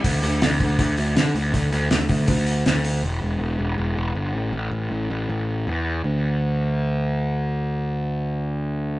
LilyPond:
<<
  \new Staff \with { instrumentName = "Picked electric bass" } { \clef bass \time 4/4 \key a \dorian \tempo 4 = 160 d,8 d,8 d,8 d,8 d,8 d,8 d8 d,8 | d,8 d,8 d,8 d,8 d,4 d,4 | e,,8 e,,8 e,,8 e,,8 e,,8 e,,8 g,,8 a,,8 | a,,8 a,,8 a,,8 a,,8 a,,4 e,4 |
d,1~ | d,1 | }
  \new DrumStaff \with { instrumentName = "Drums" } \drummode { \time 4/4 <hho bd>8 hho8 <hho sn>8 <hho bd>8 <hho bd>8 hho8 <hho sn>8 hho8 | <hho bd>8 hho8 <hho sn>8 <hho bd>8 <hho bd>8 hho8 <hho sn>8 hho8 | r4 r4 r4 r4 | r4 r4 r4 r4 |
r4 r4 r4 r4 | r4 r4 r4 r4 | }
>>